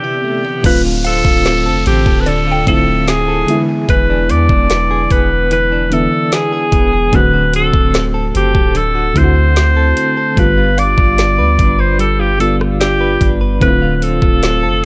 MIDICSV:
0, 0, Header, 1, 9, 480
1, 0, Start_track
1, 0, Tempo, 810811
1, 381, Time_signature, 4, 2, 24, 8
1, 8791, End_track
2, 0, Start_track
2, 0, Title_t, "Synth pluck"
2, 0, Program_c, 0, 84
2, 619, Note_on_c, 0, 77, 56
2, 1119, Note_off_c, 0, 77, 0
2, 1340, Note_on_c, 0, 74, 59
2, 1490, Note_on_c, 0, 79, 56
2, 1840, Note_off_c, 0, 74, 0
2, 1974, Note_off_c, 0, 79, 0
2, 6380, Note_on_c, 0, 77, 54
2, 6879, Note_off_c, 0, 77, 0
2, 8791, End_track
3, 0, Start_track
3, 0, Title_t, "Alto saxophone"
3, 0, Program_c, 1, 65
3, 0, Note_on_c, 1, 67, 82
3, 386, Note_off_c, 1, 67, 0
3, 390, Note_on_c, 1, 71, 96
3, 484, Note_off_c, 1, 71, 0
3, 630, Note_on_c, 1, 69, 95
3, 1082, Note_off_c, 1, 69, 0
3, 1107, Note_on_c, 1, 67, 88
3, 1305, Note_on_c, 1, 71, 66
3, 1314, Note_off_c, 1, 67, 0
3, 1347, Note_on_c, 1, 69, 91
3, 1356, Note_off_c, 1, 71, 0
3, 1582, Note_off_c, 1, 69, 0
3, 1585, Note_on_c, 1, 69, 92
3, 1825, Note_on_c, 1, 68, 94
3, 1834, Note_off_c, 1, 69, 0
3, 2143, Note_off_c, 1, 68, 0
3, 2306, Note_on_c, 1, 71, 102
3, 2547, Note_on_c, 1, 74, 107
3, 2556, Note_off_c, 1, 71, 0
3, 3026, Note_on_c, 1, 71, 97
3, 3035, Note_off_c, 1, 74, 0
3, 3264, Note_off_c, 1, 71, 0
3, 3270, Note_on_c, 1, 71, 102
3, 3510, Note_on_c, 1, 69, 91
3, 3519, Note_off_c, 1, 71, 0
3, 3752, Note_on_c, 1, 68, 100
3, 3761, Note_off_c, 1, 69, 0
3, 4234, Note_on_c, 1, 71, 105
3, 4243, Note_off_c, 1, 68, 0
3, 4468, Note_off_c, 1, 71, 0
3, 4473, Note_on_c, 1, 69, 97
3, 4765, Note_off_c, 1, 69, 0
3, 4952, Note_on_c, 1, 67, 93
3, 5190, Note_on_c, 1, 69, 94
3, 5199, Note_off_c, 1, 67, 0
3, 5429, Note_on_c, 1, 72, 110
3, 5438, Note_off_c, 1, 69, 0
3, 6148, Note_on_c, 1, 71, 105
3, 6157, Note_off_c, 1, 72, 0
3, 6384, Note_on_c, 1, 74, 110
3, 6393, Note_off_c, 1, 71, 0
3, 6984, Note_on_c, 1, 72, 96
3, 6993, Note_off_c, 1, 74, 0
3, 7101, Note_off_c, 1, 72, 0
3, 7105, Note_on_c, 1, 69, 97
3, 7223, Note_on_c, 1, 67, 97
3, 7232, Note_off_c, 1, 69, 0
3, 7338, Note_off_c, 1, 67, 0
3, 7342, Note_on_c, 1, 69, 90
3, 7436, Note_off_c, 1, 69, 0
3, 7580, Note_on_c, 1, 67, 95
3, 7879, Note_off_c, 1, 67, 0
3, 8064, Note_on_c, 1, 71, 108
3, 8264, Note_off_c, 1, 71, 0
3, 8264, Note_on_c, 1, 71, 73
3, 8305, Note_on_c, 1, 69, 105
3, 8314, Note_off_c, 1, 71, 0
3, 8791, Note_off_c, 1, 69, 0
3, 8791, End_track
4, 0, Start_track
4, 0, Title_t, "Clean electric guitar"
4, 0, Program_c, 2, 27
4, 0, Note_on_c, 2, 48, 76
4, 0, Note_on_c, 2, 59, 56
4, 22, Note_on_c, 2, 64, 59
4, 141, Note_off_c, 2, 59, 0
4, 143, Note_on_c, 2, 57, 59
4, 264, Note_off_c, 2, 57, 0
4, 264, Note_on_c, 2, 59, 50
4, 382, Note_off_c, 2, 48, 0
4, 384, Note_on_c, 2, 50, 82
4, 429, Note_off_c, 2, 64, 0
4, 430, Note_off_c, 2, 59, 0
4, 504, Note_on_c, 2, 65, 62
4, 622, Note_on_c, 2, 60, 62
4, 736, Note_off_c, 2, 65, 0
4, 743, Note_on_c, 2, 65, 58
4, 855, Note_off_c, 2, 60, 0
4, 863, Note_on_c, 2, 60, 68
4, 982, Note_on_c, 2, 69, 68
4, 1096, Note_off_c, 2, 60, 0
4, 1103, Note_on_c, 2, 60, 68
4, 1217, Note_off_c, 2, 69, 0
4, 1224, Note_on_c, 2, 69, 69
4, 1339, Note_off_c, 2, 50, 0
4, 1342, Note_on_c, 2, 50, 83
4, 1455, Note_off_c, 2, 65, 0
4, 1462, Note_on_c, 2, 65, 64
4, 1575, Note_off_c, 2, 60, 0
4, 1582, Note_on_c, 2, 60, 59
4, 1695, Note_off_c, 2, 65, 0
4, 1702, Note_on_c, 2, 65, 58
4, 1813, Note_off_c, 2, 60, 0
4, 1820, Note_on_c, 2, 60, 76
4, 1935, Note_off_c, 2, 69, 0
4, 1942, Note_on_c, 2, 69, 69
4, 2063, Note_on_c, 2, 52, 78
4, 2109, Note_off_c, 2, 60, 0
4, 2109, Note_off_c, 2, 65, 0
4, 2110, Note_off_c, 2, 69, 0
4, 2184, Note_on_c, 2, 68, 63
4, 2202, Note_off_c, 2, 50, 0
4, 2298, Note_off_c, 2, 52, 0
4, 2305, Note_on_c, 2, 52, 80
4, 2426, Note_on_c, 2, 62, 64
4, 2544, Note_on_c, 2, 59, 66
4, 2662, Note_off_c, 2, 62, 0
4, 2664, Note_on_c, 2, 62, 61
4, 2778, Note_off_c, 2, 59, 0
4, 2786, Note_on_c, 2, 59, 74
4, 2898, Note_off_c, 2, 68, 0
4, 2905, Note_on_c, 2, 68, 68
4, 3018, Note_off_c, 2, 59, 0
4, 3025, Note_on_c, 2, 59, 68
4, 3143, Note_off_c, 2, 68, 0
4, 3258, Note_off_c, 2, 52, 0
4, 3265, Note_on_c, 2, 52, 81
4, 3385, Note_off_c, 2, 62, 0
4, 3387, Note_on_c, 2, 62, 60
4, 3498, Note_off_c, 2, 59, 0
4, 3505, Note_on_c, 2, 59, 66
4, 3623, Note_off_c, 2, 62, 0
4, 3626, Note_on_c, 2, 62, 60
4, 3737, Note_off_c, 2, 59, 0
4, 3744, Note_on_c, 2, 59, 74
4, 3863, Note_on_c, 2, 68, 69
4, 3977, Note_off_c, 2, 59, 0
4, 3984, Note_on_c, 2, 59, 58
4, 4096, Note_off_c, 2, 68, 0
4, 4103, Note_on_c, 2, 68, 64
4, 4223, Note_on_c, 2, 50, 85
4, 4270, Note_off_c, 2, 68, 0
4, 4271, Note_off_c, 2, 52, 0
4, 4271, Note_off_c, 2, 59, 0
4, 4340, Note_off_c, 2, 62, 0
4, 4342, Note_on_c, 2, 66, 65
4, 4459, Note_on_c, 2, 60, 65
4, 4582, Note_off_c, 2, 66, 0
4, 4693, Note_off_c, 2, 60, 0
4, 4700, Note_on_c, 2, 60, 70
4, 4819, Note_on_c, 2, 69, 69
4, 4933, Note_off_c, 2, 60, 0
4, 4940, Note_on_c, 2, 60, 70
4, 5053, Note_off_c, 2, 69, 0
4, 5060, Note_on_c, 2, 69, 65
4, 5178, Note_off_c, 2, 50, 0
4, 5180, Note_on_c, 2, 50, 85
4, 5298, Note_on_c, 2, 66, 60
4, 5411, Note_off_c, 2, 60, 0
4, 5418, Note_on_c, 2, 60, 64
4, 5530, Note_off_c, 2, 66, 0
4, 5538, Note_on_c, 2, 66, 60
4, 5652, Note_off_c, 2, 60, 0
4, 5659, Note_on_c, 2, 60, 72
4, 5774, Note_off_c, 2, 69, 0
4, 5781, Note_on_c, 2, 69, 72
4, 5894, Note_off_c, 2, 60, 0
4, 5902, Note_on_c, 2, 60, 61
4, 6014, Note_off_c, 2, 69, 0
4, 6021, Note_on_c, 2, 69, 61
4, 6141, Note_on_c, 2, 55, 82
4, 6187, Note_off_c, 2, 66, 0
4, 6189, Note_off_c, 2, 60, 0
4, 6189, Note_off_c, 2, 69, 0
4, 6260, Note_on_c, 2, 65, 65
4, 6379, Note_on_c, 2, 62, 65
4, 6497, Note_off_c, 2, 65, 0
4, 6499, Note_on_c, 2, 65, 63
4, 6616, Note_off_c, 2, 62, 0
4, 6619, Note_on_c, 2, 62, 69
4, 6739, Note_on_c, 2, 71, 68
4, 6855, Note_off_c, 2, 62, 0
4, 6857, Note_on_c, 2, 62, 67
4, 6971, Note_off_c, 2, 71, 0
4, 6978, Note_on_c, 2, 71, 67
4, 7090, Note_off_c, 2, 55, 0
4, 7097, Note_on_c, 2, 55, 82
4, 7217, Note_off_c, 2, 65, 0
4, 7220, Note_on_c, 2, 65, 62
4, 7252, Note_off_c, 2, 50, 0
4, 7337, Note_off_c, 2, 62, 0
4, 7340, Note_on_c, 2, 62, 66
4, 7456, Note_off_c, 2, 65, 0
4, 7458, Note_on_c, 2, 65, 59
4, 7577, Note_off_c, 2, 62, 0
4, 7579, Note_on_c, 2, 62, 73
4, 7692, Note_off_c, 2, 71, 0
4, 7699, Note_on_c, 2, 71, 67
4, 7816, Note_off_c, 2, 62, 0
4, 7818, Note_on_c, 2, 62, 61
4, 7932, Note_off_c, 2, 71, 0
4, 7939, Note_on_c, 2, 71, 67
4, 8060, Note_on_c, 2, 50, 78
4, 8107, Note_off_c, 2, 55, 0
4, 8108, Note_off_c, 2, 71, 0
4, 8178, Note_off_c, 2, 65, 0
4, 8181, Note_on_c, 2, 65, 61
4, 8297, Note_off_c, 2, 62, 0
4, 8299, Note_on_c, 2, 60, 62
4, 8413, Note_off_c, 2, 65, 0
4, 8420, Note_on_c, 2, 65, 61
4, 8534, Note_off_c, 2, 60, 0
4, 8541, Note_on_c, 2, 60, 67
4, 8661, Note_on_c, 2, 69, 68
4, 8774, Note_off_c, 2, 60, 0
4, 8791, Note_off_c, 2, 50, 0
4, 8791, Note_off_c, 2, 65, 0
4, 8791, Note_off_c, 2, 69, 0
4, 8791, End_track
5, 0, Start_track
5, 0, Title_t, "FM electric piano"
5, 0, Program_c, 3, 5
5, 0, Control_c, 3, 64, 127
5, 0, Note_on_c, 3, 50, 56
5, 0, Note_on_c, 3, 52, 67
5, 0, Note_on_c, 3, 59, 61
5, 0, Note_on_c, 3, 60, 61
5, 0, Note_on_c, 3, 67, 73
5, 267, Note_off_c, 3, 59, 0
5, 270, Note_off_c, 3, 60, 0
5, 274, Note_off_c, 3, 67, 0
5, 282, Note_off_c, 3, 52, 0
5, 371, Note_off_c, 3, 50, 0
5, 371, Note_on_c, 3, 50, 79
5, 378, Note_on_c, 3, 57, 68
5, 385, Note_on_c, 3, 60, 71
5, 390, Control_c, 3, 64, 0
5, 392, Note_on_c, 3, 65, 85
5, 490, Control_c, 3, 64, 127
5, 1187, Note_off_c, 3, 50, 0
5, 1190, Note_off_c, 3, 57, 0
5, 1194, Note_off_c, 3, 60, 0
5, 1197, Note_off_c, 3, 65, 0
5, 1572, Note_on_c, 3, 50, 74
5, 1579, Note_on_c, 3, 57, 67
5, 1587, Note_on_c, 3, 60, 67
5, 1593, Note_on_c, 3, 64, 80
5, 2046, Note_off_c, 3, 50, 0
5, 2054, Note_on_c, 3, 50, 83
5, 2060, Note_off_c, 3, 57, 0
5, 2060, Note_on_c, 3, 56, 75
5, 2064, Note_off_c, 3, 60, 0
5, 2067, Note_off_c, 3, 64, 0
5, 2067, Note_on_c, 3, 59, 73
5, 2070, Control_c, 3, 64, 0
5, 2074, Note_on_c, 3, 64, 97
5, 2180, Control_c, 3, 64, 127
5, 2868, Note_off_c, 3, 50, 0
5, 2871, Note_off_c, 3, 56, 0
5, 2875, Note_off_c, 3, 59, 0
5, 2878, Note_off_c, 3, 64, 0
5, 3492, Note_on_c, 3, 50, 73
5, 3499, Note_on_c, 3, 52, 70
5, 3505, Note_on_c, 3, 59, 66
5, 3512, Note_on_c, 3, 64, 84
5, 4104, Note_off_c, 3, 50, 0
5, 4108, Note_off_c, 3, 52, 0
5, 4111, Note_off_c, 3, 59, 0
5, 4115, Note_off_c, 3, 64, 0
5, 4212, Note_on_c, 3, 50, 75
5, 4219, Note_on_c, 3, 57, 71
5, 4225, Note_on_c, 3, 60, 71
5, 4229, Control_c, 3, 64, 0
5, 4232, Note_on_c, 3, 66, 79
5, 4316, Control_c, 3, 64, 127
5, 5027, Note_off_c, 3, 50, 0
5, 5031, Note_off_c, 3, 57, 0
5, 5034, Note_off_c, 3, 60, 0
5, 5037, Note_off_c, 3, 66, 0
5, 5411, Note_on_c, 3, 50, 74
5, 5417, Note_on_c, 3, 57, 66
5, 5425, Note_on_c, 3, 60, 65
5, 5431, Note_on_c, 3, 64, 65
5, 5465, Note_off_c, 3, 64, 0
5, 5470, Note_on_c, 3, 66, 81
5, 6024, Note_off_c, 3, 50, 0
5, 6027, Note_off_c, 3, 57, 0
5, 6031, Note_off_c, 3, 60, 0
5, 6053, Note_off_c, 3, 66, 0
5, 6130, Note_on_c, 3, 50, 76
5, 6137, Note_on_c, 3, 55, 72
5, 6144, Note_on_c, 3, 57, 56
5, 6150, Control_c, 3, 64, 0
5, 6151, Note_on_c, 3, 65, 84
5, 6181, Note_off_c, 3, 57, 0
5, 6183, Note_on_c, 3, 59, 69
5, 6259, Control_c, 3, 64, 127
5, 6946, Note_off_c, 3, 50, 0
5, 6950, Note_off_c, 3, 55, 0
5, 6957, Note_off_c, 3, 65, 0
5, 6973, Note_off_c, 3, 59, 0
5, 7328, Note_on_c, 3, 50, 73
5, 7335, Note_on_c, 3, 55, 66
5, 7342, Note_on_c, 3, 59, 66
5, 7349, Note_on_c, 3, 65, 78
5, 7943, Note_off_c, 3, 50, 0
5, 7946, Note_off_c, 3, 55, 0
5, 7950, Note_off_c, 3, 59, 0
5, 7953, Note_off_c, 3, 65, 0
5, 8048, Note_on_c, 3, 50, 79
5, 8057, Note_on_c, 3, 57, 69
5, 8063, Note_on_c, 3, 60, 71
5, 8070, Control_c, 3, 64, 0
5, 8070, Note_on_c, 3, 64, 65
5, 8104, Note_off_c, 3, 64, 0
5, 8109, Note_on_c, 3, 65, 82
5, 8187, Control_c, 3, 64, 127
5, 8791, Note_off_c, 3, 50, 0
5, 8791, Note_off_c, 3, 57, 0
5, 8791, Note_off_c, 3, 60, 0
5, 8791, Note_off_c, 3, 65, 0
5, 8791, End_track
6, 0, Start_track
6, 0, Title_t, "808-style bass"
6, 0, Program_c, 4, 38
6, 380, Note_on_c, 4, 26, 109
6, 726, Note_off_c, 4, 26, 0
6, 739, Note_on_c, 4, 26, 111
6, 983, Note_on_c, 4, 29, 103
6, 992, Note_off_c, 4, 26, 0
6, 1096, Note_off_c, 4, 29, 0
6, 1104, Note_on_c, 4, 33, 107
6, 1218, Note_off_c, 4, 33, 0
6, 1220, Note_on_c, 4, 26, 99
6, 1566, Note_off_c, 4, 26, 0
6, 1583, Note_on_c, 4, 26, 98
6, 2043, Note_off_c, 4, 26, 0
6, 2302, Note_on_c, 4, 28, 107
6, 2546, Note_on_c, 4, 40, 96
6, 2554, Note_off_c, 4, 28, 0
6, 2658, Note_off_c, 4, 40, 0
6, 2661, Note_on_c, 4, 28, 107
6, 3007, Note_off_c, 4, 28, 0
6, 3024, Note_on_c, 4, 28, 97
6, 3599, Note_off_c, 4, 28, 0
6, 3981, Note_on_c, 4, 28, 103
6, 4212, Note_off_c, 4, 28, 0
6, 4222, Note_on_c, 4, 26, 114
6, 4567, Note_off_c, 4, 26, 0
6, 4580, Note_on_c, 4, 26, 108
6, 4926, Note_off_c, 4, 26, 0
6, 4944, Note_on_c, 4, 30, 99
6, 5058, Note_off_c, 4, 30, 0
6, 5061, Note_on_c, 4, 26, 100
6, 5407, Note_off_c, 4, 26, 0
6, 5421, Note_on_c, 4, 38, 102
6, 5882, Note_off_c, 4, 38, 0
6, 6142, Note_on_c, 4, 31, 112
6, 6487, Note_off_c, 4, 31, 0
6, 6499, Note_on_c, 4, 31, 110
6, 6744, Note_on_c, 4, 38, 102
6, 6753, Note_off_c, 4, 31, 0
6, 6857, Note_off_c, 4, 38, 0
6, 6862, Note_on_c, 4, 31, 104
6, 7798, Note_off_c, 4, 31, 0
6, 7821, Note_on_c, 4, 31, 104
6, 8051, Note_off_c, 4, 31, 0
6, 8061, Note_on_c, 4, 26, 109
6, 8407, Note_off_c, 4, 26, 0
6, 8420, Note_on_c, 4, 26, 110
6, 8663, Note_on_c, 4, 29, 101
6, 8672, Note_off_c, 4, 26, 0
6, 8776, Note_off_c, 4, 29, 0
6, 8791, End_track
7, 0, Start_track
7, 0, Title_t, "Downlifter"
7, 0, Program_c, 5, 103
7, 380, Note_on_c, 5, 60, 84
7, 4221, Note_off_c, 5, 60, 0
7, 8791, End_track
8, 0, Start_track
8, 0, Title_t, "Swell"
8, 0, Program_c, 6, 103
8, 0, Note_on_c, 6, 60, 85
8, 381, Note_off_c, 6, 60, 0
8, 8791, End_track
9, 0, Start_track
9, 0, Title_t, "Drums"
9, 379, Note_on_c, 9, 36, 115
9, 380, Note_on_c, 9, 42, 79
9, 380, Note_on_c, 9, 49, 99
9, 439, Note_off_c, 9, 36, 0
9, 439, Note_off_c, 9, 42, 0
9, 439, Note_off_c, 9, 49, 0
9, 620, Note_on_c, 9, 42, 81
9, 679, Note_off_c, 9, 42, 0
9, 738, Note_on_c, 9, 36, 98
9, 798, Note_off_c, 9, 36, 0
9, 858, Note_on_c, 9, 42, 73
9, 862, Note_on_c, 9, 38, 112
9, 917, Note_off_c, 9, 42, 0
9, 922, Note_off_c, 9, 38, 0
9, 1100, Note_on_c, 9, 42, 75
9, 1159, Note_off_c, 9, 42, 0
9, 1220, Note_on_c, 9, 36, 85
9, 1279, Note_off_c, 9, 36, 0
9, 1340, Note_on_c, 9, 42, 71
9, 1399, Note_off_c, 9, 42, 0
9, 1581, Note_on_c, 9, 36, 92
9, 1581, Note_on_c, 9, 42, 71
9, 1640, Note_off_c, 9, 36, 0
9, 1640, Note_off_c, 9, 42, 0
9, 1821, Note_on_c, 9, 42, 73
9, 1824, Note_on_c, 9, 38, 105
9, 1880, Note_off_c, 9, 42, 0
9, 1883, Note_off_c, 9, 38, 0
9, 2062, Note_on_c, 9, 42, 72
9, 2121, Note_off_c, 9, 42, 0
9, 2301, Note_on_c, 9, 36, 109
9, 2302, Note_on_c, 9, 42, 76
9, 2360, Note_off_c, 9, 36, 0
9, 2361, Note_off_c, 9, 42, 0
9, 2543, Note_on_c, 9, 42, 82
9, 2602, Note_off_c, 9, 42, 0
9, 2660, Note_on_c, 9, 36, 105
9, 2719, Note_off_c, 9, 36, 0
9, 2781, Note_on_c, 9, 42, 75
9, 2785, Note_on_c, 9, 38, 106
9, 2840, Note_off_c, 9, 42, 0
9, 2845, Note_off_c, 9, 38, 0
9, 3022, Note_on_c, 9, 42, 77
9, 3023, Note_on_c, 9, 36, 92
9, 3081, Note_off_c, 9, 42, 0
9, 3082, Note_off_c, 9, 36, 0
9, 3262, Note_on_c, 9, 42, 70
9, 3321, Note_off_c, 9, 42, 0
9, 3503, Note_on_c, 9, 42, 75
9, 3562, Note_off_c, 9, 42, 0
9, 3742, Note_on_c, 9, 42, 74
9, 3745, Note_on_c, 9, 38, 97
9, 3801, Note_off_c, 9, 42, 0
9, 3804, Note_off_c, 9, 38, 0
9, 3980, Note_on_c, 9, 36, 101
9, 3980, Note_on_c, 9, 42, 72
9, 4039, Note_off_c, 9, 36, 0
9, 4039, Note_off_c, 9, 42, 0
9, 4219, Note_on_c, 9, 42, 75
9, 4220, Note_on_c, 9, 36, 118
9, 4279, Note_off_c, 9, 42, 0
9, 4280, Note_off_c, 9, 36, 0
9, 4461, Note_on_c, 9, 42, 86
9, 4520, Note_off_c, 9, 42, 0
9, 4579, Note_on_c, 9, 36, 104
9, 4638, Note_off_c, 9, 36, 0
9, 4701, Note_on_c, 9, 42, 79
9, 4705, Note_on_c, 9, 38, 109
9, 4760, Note_off_c, 9, 42, 0
9, 4765, Note_off_c, 9, 38, 0
9, 4942, Note_on_c, 9, 42, 75
9, 5002, Note_off_c, 9, 42, 0
9, 5060, Note_on_c, 9, 36, 86
9, 5119, Note_off_c, 9, 36, 0
9, 5179, Note_on_c, 9, 42, 73
9, 5239, Note_off_c, 9, 42, 0
9, 5421, Note_on_c, 9, 36, 91
9, 5422, Note_on_c, 9, 42, 72
9, 5480, Note_off_c, 9, 36, 0
9, 5481, Note_off_c, 9, 42, 0
9, 5661, Note_on_c, 9, 42, 73
9, 5664, Note_on_c, 9, 38, 102
9, 5720, Note_off_c, 9, 42, 0
9, 5724, Note_off_c, 9, 38, 0
9, 5901, Note_on_c, 9, 42, 73
9, 5960, Note_off_c, 9, 42, 0
9, 6140, Note_on_c, 9, 36, 118
9, 6142, Note_on_c, 9, 42, 80
9, 6200, Note_off_c, 9, 36, 0
9, 6201, Note_off_c, 9, 42, 0
9, 6382, Note_on_c, 9, 42, 85
9, 6441, Note_off_c, 9, 42, 0
9, 6499, Note_on_c, 9, 36, 102
9, 6558, Note_off_c, 9, 36, 0
9, 6620, Note_on_c, 9, 42, 73
9, 6624, Note_on_c, 9, 38, 115
9, 6679, Note_off_c, 9, 42, 0
9, 6684, Note_off_c, 9, 38, 0
9, 6861, Note_on_c, 9, 36, 92
9, 6861, Note_on_c, 9, 42, 73
9, 6920, Note_off_c, 9, 42, 0
9, 6921, Note_off_c, 9, 36, 0
9, 7100, Note_on_c, 9, 42, 71
9, 7160, Note_off_c, 9, 42, 0
9, 7342, Note_on_c, 9, 42, 74
9, 7402, Note_off_c, 9, 42, 0
9, 7466, Note_on_c, 9, 37, 90
9, 7525, Note_off_c, 9, 37, 0
9, 7582, Note_on_c, 9, 42, 78
9, 7585, Note_on_c, 9, 38, 99
9, 7641, Note_off_c, 9, 42, 0
9, 7644, Note_off_c, 9, 38, 0
9, 7819, Note_on_c, 9, 36, 93
9, 7822, Note_on_c, 9, 42, 68
9, 7879, Note_off_c, 9, 36, 0
9, 7881, Note_off_c, 9, 42, 0
9, 8060, Note_on_c, 9, 36, 115
9, 8061, Note_on_c, 9, 42, 77
9, 8119, Note_off_c, 9, 36, 0
9, 8120, Note_off_c, 9, 42, 0
9, 8301, Note_on_c, 9, 42, 84
9, 8360, Note_off_c, 9, 42, 0
9, 8419, Note_on_c, 9, 36, 100
9, 8478, Note_off_c, 9, 36, 0
9, 8541, Note_on_c, 9, 42, 76
9, 8545, Note_on_c, 9, 38, 110
9, 8600, Note_off_c, 9, 42, 0
9, 8604, Note_off_c, 9, 38, 0
9, 8791, End_track
0, 0, End_of_file